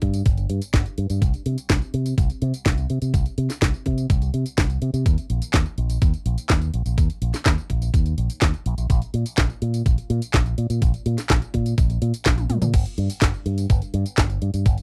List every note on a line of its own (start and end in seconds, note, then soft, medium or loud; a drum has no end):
0.02 0.21 G2 medium
0.02 kick medium
0.02 closed hi-hat medium
0.14 closed hi-hat medium
0.14 tambourine medium
0.26 0.45 G1 medium
0.26 kick loud
0.26 closed hi-hat medium
0.26 tambourine soft
0.38 closed hi-hat soft
0.38 tambourine soft
0.50 0.59 G2 medium
0.50 closed hi-hat medium
0.62 closed hi-hat soft
0.62 tambourine medium
0.74 0.83 G1 loud
0.74 kick loud
0.74 snare loud
0.74 closed hi-hat medium
0.74 tambourine soft
0.86 closed hi-hat soft
0.86 tambourine soft
0.98 1.08 G2 loud
0.98 closed hi-hat medium
1.10 1.20 G2 medium
1.10 closed hi-hat medium
1.10 tambourine medium
1.22 1.31 C2 loud
1.22 kick loud
1.22 closed hi-hat medium
1.22 tambourine soft
1.34 closed hi-hat soft
1.34 tambourine soft
1.46 1.55 C3 medium
1.46 closed hi-hat medium
1.58 closed hi-hat medium
1.58 tambourine medium
1.70 1.79 C2 medium
1.70 kick loud
1.70 snare loud
1.70 closed hi-hat medium
1.70 tambourine soft
1.82 tambourine soft
1.94 2.13 C3 medium
1.94 closed hi-hat medium
2.06 closed hi-hat medium
2.06 tambourine medium
2.18 2.27 C2 loud
2.18 kick loud
2.18 closed hi-hat medium
2.18 tambourine soft
2.30 closed hi-hat soft
2.30 tambourine soft
2.42 2.51 C3 loud
2.42 closed hi-hat medium
2.54 closed hi-hat soft
2.54 tambourine medium
2.66 2.85 C2 medium
2.66 kick loud
2.66 snare loud
2.66 closed hi-hat medium
2.66 tambourine soft
2.78 closed hi-hat soft
2.78 tambourine soft
2.90 3.00 C3 medium
2.90 closed hi-hat medium
3.02 3.11 C3 medium
3.02 closed hi-hat medium
3.02 tambourine medium
3.14 3.23 C2 loud
3.14 kick loud
3.14 closed hi-hat medium
3.14 tambourine soft
3.26 closed hi-hat soft
3.26 tambourine soft
3.38 3.47 C3 medium
3.38 closed hi-hat medium
3.50 snare soft
3.50 closed hi-hat soft
3.50 tambourine medium
3.62 3.71 C2 medium
3.62 kick loud
3.62 snare loud
3.62 closed hi-hat medium
3.62 tambourine soft
3.74 tambourine soft
3.86 4.05 C3 medium
3.86 kick medium
3.86 closed hi-hat medium
3.98 closed hi-hat soft
3.98 tambourine medium
4.10 4.29 C2 medium
4.10 kick loud
4.10 closed hi-hat medium
4.10 tambourine soft
4.22 closed hi-hat soft
4.22 tambourine soft
4.34 4.43 C3 medium
4.34 closed hi-hat medium
4.46 closed hi-hat soft
4.46 tambourine medium
4.58 4.77 C2 medium
4.58 kick loud
4.58 snare loud
4.58 closed hi-hat medium
4.58 tambourine soft
4.70 closed hi-hat soft
4.70 tambourine soft
4.82 4.91 C3 medium
4.82 closed hi-hat medium
4.94 5.03 C3 loud
4.94 closed hi-hat soft
4.94 tambourine medium
5.06 5.15 D#2 loud
5.06 kick loud
5.06 closed hi-hat medium
5.06 tambourine soft
5.18 closed hi-hat soft
5.18 tambourine soft
5.30 5.39 A#1 medium
5.30 closed hi-hat medium
5.42 closed hi-hat soft
5.42 tambourine medium
5.54 5.63 D#2 medium
5.54 kick loud
5.54 snare loud
5.54 clap medium
5.54 closed hi-hat medium
5.54 tambourine medium
5.66 tambourine soft
5.78 5.97 A#1 medium
5.78 closed hi-hat medium
5.90 closed hi-hat soft
5.90 tambourine medium
6.02 6.11 D#2 loud
6.02 kick loud
6.02 closed hi-hat medium
6.02 tambourine medium
6.14 closed hi-hat soft
6.14 tambourine soft
6.26 6.35 A#1 medium
6.26 closed hi-hat medium
6.38 closed hi-hat soft
6.38 tambourine medium
6.50 6.69 D#2 medium
6.50 kick loud
6.50 snare loud
6.50 clap medium
6.50 closed hi-hat medium
6.50 tambourine soft
6.62 closed hi-hat soft
6.62 tambourine soft
6.74 6.83 A#1 medium
6.74 closed hi-hat medium
6.86 6.95 A#1 medium
6.86 closed hi-hat soft
6.86 tambourine medium
6.98 7.07 D#2 loud
6.98 kick loud
6.98 closed hi-hat medium
6.98 tambourine soft
7.10 closed hi-hat soft
7.10 tambourine soft
7.22 7.31 A#1 medium
7.22 closed hi-hat medium
7.34 snare soft
7.34 closed hi-hat medium
7.34 tambourine medium
7.46 7.55 D#2 medium
7.46 kick loud
7.46 snare loud
7.46 clap medium
7.46 closed hi-hat medium
7.46 tambourine medium
7.58 tambourine soft
7.70 7.89 A#1 medium
7.70 kick medium
7.70 closed hi-hat medium
7.82 closed hi-hat medium
7.82 tambourine medium
7.94 8.13 D#2 medium
7.94 kick loud
7.94 closed hi-hat medium
7.94 tambourine medium
8.06 closed hi-hat soft
8.06 tambourine soft
8.18 8.27 A#1 medium
8.18 closed hi-hat medium
8.30 closed hi-hat medium
8.30 tambourine medium
8.42 8.51 D#2 loud
8.42 kick loud
8.42 snare loud
8.42 clap medium
8.42 closed hi-hat medium
8.42 tambourine soft
8.54 closed hi-hat soft
8.54 tambourine soft
8.66 8.75 A#1 loud
8.66 closed hi-hat medium
8.78 8.87 A#1 medium
8.78 closed hi-hat medium
8.78 tambourine medium
8.90 8.99 A#1 loud
8.90 kick loud
8.90 closed hi-hat medium
8.90 tambourine soft
9.02 closed hi-hat soft
9.02 tambourine soft
9.14 9.23 A#2 medium
9.14 closed hi-hat medium
9.26 closed hi-hat medium
9.26 tambourine medium
9.38 9.47 A#1 medium
9.38 kick loud
9.38 snare loud
9.38 clap loud
9.38 closed hi-hat medium
9.38 tambourine soft
9.50 tambourine soft
9.62 9.81 A#2 medium
9.62 closed hi-hat medium
9.74 closed hi-hat medium
9.74 tambourine medium
9.86 9.95 A#1 medium
9.86 kick loud
9.86 closed hi-hat medium
9.86 tambourine soft
9.98 closed hi-hat soft
9.98 tambourine soft
10.10 10.19 A#2 loud
10.10 closed hi-hat medium
10.22 closed hi-hat medium
10.22 tambourine medium
10.34 10.53 A#1 medium
10.34 kick loud
10.34 snare loud
10.34 clap medium
10.34 closed hi-hat medium
10.34 tambourine soft
10.46 closed hi-hat soft
10.46 tambourine soft
10.58 10.67 A#2 medium
10.58 closed hi-hat medium
10.70 10.79 A#2 medium
10.70 closed hi-hat medium
10.70 tambourine medium
10.82 10.92 A#1 loud
10.82 kick loud
10.82 closed hi-hat medium
10.82 tambourine soft
10.94 closed hi-hat soft
10.94 tambourine soft
11.06 11.15 A#2 medium
11.06 closed hi-hat medium
11.18 snare soft
11.18 closed hi-hat medium
11.18 tambourine medium
11.30 11.39 A#1 medium
11.30 kick loud
11.30 snare loud
11.30 clap loud
11.30 closed hi-hat medium
11.30 tambourine soft
11.42 closed hi-hat soft
11.42 tambourine soft
11.54 11.73 A#2 medium
11.54 kick medium
11.54 closed hi-hat medium
11.66 closed hi-hat medium
11.66 tambourine medium
11.78 11.97 A#1 medium
11.78 kick loud
11.78 closed hi-hat medium
11.78 tambourine soft
11.90 closed hi-hat soft
11.90 tambourine soft
12.02 12.11 A#2 medium
12.02 closed hi-hat medium
12.14 closed hi-hat medium
12.14 tambourine medium
12.26 12.45 A#1 medium
12.26 kick loud
12.26 snare loud
12.26 clap loud
12.26 closed hi-hat medium
12.26 tambourine soft
12.38 closed hi-hat soft
12.38 high tom soft
12.38 tambourine soft
12.50 12.60 A#2 loud
12.50 closed hi-hat medium
12.50 mid tom medium
12.62 12.71 A#2 loud
12.62 closed hi-hat medium
12.62 mid tom medium
12.62 tambourine medium
12.74 12.83 G1 loud
12.74 kick loud
12.74 closed hi-hat medium
12.74 crash medium
12.74 tambourine soft
12.86 closed hi-hat soft
12.86 tambourine soft
12.98 13.07 G2 medium
12.98 closed hi-hat medium
13.10 closed hi-hat medium
13.10 tambourine medium
13.22 13.32 G1 medium
13.22 kick loud
13.22 snare loud
13.22 clap loud
13.22 closed hi-hat medium
13.22 tambourine soft
13.34 tambourine soft
13.46 13.65 G2 medium
13.46 closed hi-hat medium
13.58 closed hi-hat medium
13.58 tambourine medium
13.70 13.79 G1 medium
13.70 kick loud
13.70 closed hi-hat medium
13.70 tambourine soft
13.82 closed hi-hat soft
13.82 tambourine soft
13.94 14.03 G2 loud
13.94 closed hi-hat medium
14.06 closed hi-hat medium
14.06 tambourine medium
14.18 14.37 G1 medium
14.18 kick loud
14.18 snare loud
14.18 clap loud
14.18 closed hi-hat medium
14.18 tambourine soft
14.30 closed hi-hat soft
14.30 tambourine soft
14.42 14.51 G2 medium
14.42 closed hi-hat medium
14.54 14.63 G2 medium
14.54 closed hi-hat medium
14.54 tambourine medium
14.66 14.75 G1 loud
14.66 kick loud
14.66 closed hi-hat medium
14.66 tambourine soft
14.78 closed hi-hat soft
14.78 tambourine soft